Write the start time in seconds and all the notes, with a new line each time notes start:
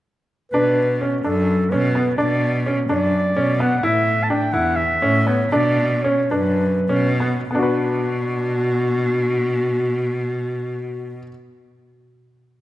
0.52 B2 D4 B4
1.01 C#4
1.24 F#2 D4 A4
1.70 B2 C#4 B4
1.95 B3
2.17 B2 D4 D5
2.66 C#4
2.89 F#2 D4 D5
3.36 B2 C#4
3.60 B3 F#5
3.77 F#5
3.83 A2 E4 E5
4.23 A5
4.30 D4 G5
4.53 E2 E4 F#5
4.76 E5
5.02 A2 C#4
5.27 B3 C#5
5.52 B2 D4 D5
6.03 C#4 C#5
6.31 F#2 D4 B4
6.89 B2 C#4
7.20 B3
7.51 B2 B3 F#4
7.55 D4 F#4
7.63 B4